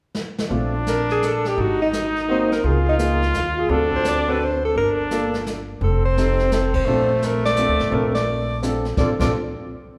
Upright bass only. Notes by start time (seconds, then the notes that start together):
0.51 A#1
1.58 G#1
2.64 C#2
3.35 D#2
3.69 D2
4.76 G1
5.81 F1
6.87 A#1
7.68 D2
7.80 A1
7.92 A#1
8.97 A#1
9.19 A#1